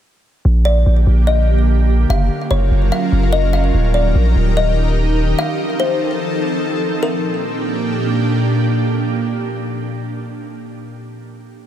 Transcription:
0.45 A#1 D3 A#3 G4
0.65 D5
0.86 A#1
1.07 A#1
1.27 D#5
2.09 F#1 F#3 C#4 F4 A#4 F5
2.51 F#1 C#5
2.71 F#1
2.92 F5
3.12 F#1
3.33 D#5
3.53 F5
3.74 D#1 D#3 D#4 G4 A#4
3.94 D5
4.15 A#1
4.36 D#1
4.57 D#5
5.38 F3 C4 A4 F5
5.80 C5
7.02 A#2 A#3 D4 G4 A#4

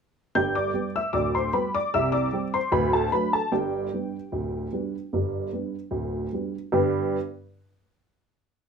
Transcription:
0.35 G1 G2 G5 G6
0.55 D5 D6
0.74 G3 B3 G4
0.96 E5 E6
1.13 D1 D2 D5 D6
1.35 C5 C6
1.53 G3 B3 G4 B4 B5
1.75 D5 D6
1.94 C2 C3 E5 E6
2.12 D5 D6
2.33 G3 C4 G4
2.54 C5 C6
2.72 D1 D2 B4 B5
2.93 A4 A5
3.12 F#3 A3 D4 B4 B5
3.33 A4 A5
3.52 G1 G2 G4 G5
3.94 G3 B3 D4
4.32 D1 D2
4.73 G3 B3 D4
5.13 G1 G2
5.53 G3 B3 D4
5.91 D1 D2
6.33 G3 B3 D4
6.72 G2 D3 B3 D4 G4 B4

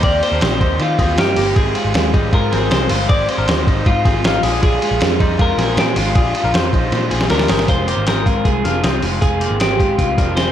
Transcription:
0.03 D#2 D#3 A#3 C4 G4 D5, kick, ride
0.23 A#3 C4 G4 C5, ride
0.32 D#2 D4 A#4
0.41 A#1 D#3 A#3 C4 D#4 G4 C5, snare, ride
0.61 D#2 A#3 C4 D#4 G4 C5, kick, ride
0.80 D#3 A#3 C4 F4 G4, ride
0.99 D#2 A#3 C4 G4 G#4, kick, snare, ride
1.18 G2 D#3 A#3 C4 D#4 G4 A#4, snare, ride
1.36 G1 A#3 C4 G4, open hi-hat, ride
1.55 G#1 G#2 D#3 F3 G#3 C4 F4 G#4, kick, ride
1.74 F3 G#3 C4 F4, ride
1.85 G#1
1.94 D#2 G#2 D#3 F3 G#3 C4 F4, snare, ride
2.13 G#1 F3 G3 G#3 C4 D#4 F4, kick, ride
2.32 G#2 F3 G#3 C4 F4 A#4, kick, ride
2.52 G#1 F3 G#3 C4 F4 G#4, snare, ride
2.71 C2 G#2 D#3 F3 G#3 C4 F4 C5, snare, ride
2.89 G1 G#3 C4 F4, open hi-hat, ride
2.94 F3
3.09 G#1 G#2 D#3 F3 G#3 C4 F4 G#4 D5, kick, ride
3.28 F3 G#3 C4 F4 C5, ride
3.38 G#1 D4 A#4
3.47 D#2 G#2 D#3 F3 G#3 C4 D#4 F4 C5, snare, ride
3.67 G#1 F3 G#3 C4 D#4 F4 C5, kick, ride
3.86 G#2 F3 G#3 C4 F4, kick, ride
4.05 G#1 F3 G#3 C4 F4 G#4, kick, snare, ride
4.24 G#2 D#3 F3 G#3 C4 D#4 F4 A#4, snare, ride
4.43 A#1 F3 G#3 D4 F4 G#4, open hi-hat, ride
4.62 A#2 D3 F3 G#3 D4 F4 G#4, kick, ride
4.82 F3 G#3 D4 F4, ride
4.91 A#1
5.00 F2 A#2 D3 F3 G#3 D4 F4, snare, ride
5.20 F2 F3 G3 G#3 D4 D#4 F4, kick, ride
5.39 F3 G#3 D4 F4 A#4, kick, ride
5.58 A#1 F3 G#3 C4 D4 F4 G#4, snare, ride
5.77 A#2 D3 F3 G#3 D4 F4 G4, snare, ride
5.96 G#1 F3 G#3 D4 F4, open hi-hat, ride
6.15 A#1 A#2 D3 F3 G#3 D4 F4 G#4, kick, ride
6.34 F3 G#3 D4 F4, ride
6.44 A#1 D4 A#4
6.54 F2 A#2 D3 F3 G#3 D4 F4 C5, snare, ride
6.73 A#1 F3 G#3 D4 D#4 F4 C5, kick, ride
6.92 A#2 F3 G#3 D4 F4, snare, ride
7.11 A#1 F3 G#3 C4 D4 F4 G#4, ride
7.21 snare
7.30 D2 A#2 D3 F3 G#3 D4 F4 A#4, snare, ride
7.39 snare
7.48 G1 F3 G#3 C4 D4 F4 G#4, snare, open hi-hat, ride
7.59 snare
7.68 F1 F2 C3 D#3 G#3 C4 F4 C5, kick, closed hi-hat
7.87 D#3 G#3 A#3 C4 F4 G4, closed hi-hat
7.97 G#1
8.06 D#3 G#3 C4 F4 G#4 A#4, snare, closed hi-hat
8.26 D#3 G#3 C4 F4, kick, closed hi-hat
8.45 C2 F2 C3 D#3 G#3 C4 F4 G#4, kick, closed hi-hat
8.64 F1 D#3 G#3 C4 D4 F4 A#4, snare, closed hi-hat
8.83 C2 D#3 G#3 C4 F4 G#4, snare, closed hi-hat
9.02 F1 D#3 G#3 C4 F4, open hi-hat
9.21 F1 F2 C3 D#3 G#3 C4 F4 G#4, kick, closed hi-hat
9.40 D#3 G#3 A#3 C4 F4 G4, closed hi-hat
9.51 G#1
9.60 D#3 G#3 C4 F4 G4 G#4, snare, closed hi-hat
9.79 D#3 G#3 C4 F4, kick, closed hi-hat
9.97 C2 F2 C3 D#3 G#3 C4 F4, kick, closed hi-hat
10.17 F1 D#3 G#3 C4 D4 F4 A#4, kick, snare, closed hi-hat
10.36 D#3 G#3 C4 F4 G#4 C5, snare, closed hi-hat

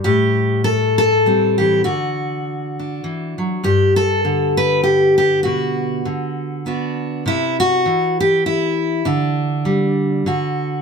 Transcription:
Already playing: G3
0.04 A2 G4
0.64 A4
0.98 A4
1.26 G3 C4
1.58 E3 G4
1.84 D3 F#4
2.79 D4
3.04 E3
3.38 F#3
3.64 G2 G4
3.96 A4
4.25 D3
4.57 B4
4.83 G4
5.18 G4
5.43 B2 F#4
6.05 D3
6.66 B3 D4 F#4
7.26 C3 E4
7.60 F#4
7.86 E3
8.20 G4
8.46 E4
9.05 D3 D4
9.65 G3
10.26 D3 F#4

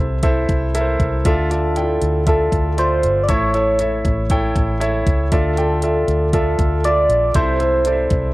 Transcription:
Already playing: C2 C3 E4 A4 C5 E5
0.23 E4 A4 C5 E5, kick, closed hi-hat
0.49 C2, kick, closed hi-hat
0.74 E4 A4 A#4 E5, closed hi-hat
0.81 C5
1.00 C2, kick, closed hi-hat
1.25 D2 D3 F4 A4 D5 E5, kick, closed hi-hat
1.50 F4 A4 D5 E5, closed hi-hat
1.76 E4 A4 D5 G5, closed hi-hat
1.82 F4
2.02 D2, closed hi-hat
2.27 F4 A4 D5 E5, kick, closed hi-hat
2.52 D2, kick, closed hi-hat
2.77 F4 A4 C5 D5 E5, closed hi-hat
3.03 G1, closed hi-hat
3.23 D5
3.28 A1 A2 E4 A4 C#5 E5, kick, closed hi-hat
3.54 E4 A4 C#5 E5, closed hi-hat
3.79 E4 A4 C#5 E5, closed hi-hat
4.05 A1, kick, closed hi-hat
4.30 E4 A4 C#5 G5, kick, closed hi-hat
4.56 A1, kick, closed hi-hat
4.80 E4 A4 C#5 E5, closed hi-hat
5.06 C#2, kick, closed hi-hat
5.32 D2 D3 F4 A4 D5 E5, kick, closed hi-hat
5.57 F4 A4 D5 G5, closed hi-hat
5.82 F4 A4 D5 E5, closed hi-hat
6.08 D2, closed hi-hat
6.33 F4 A4 D5 E5, kick, closed hi-hat
6.59 D2, kick, closed hi-hat
6.84 F4 A4 D5 E5, closed hi-hat
7.09 A#1, closed hi-hat
7.34 C2 C3 E4 A4 C5 E5, kick, closed hi-hat
7.60 E4 A4 C5 E5, closed hi-hat
7.85 E4 A4 C5 D5, closed hi-hat
7.92 E5
8.10 C2, kick, closed hi-hat

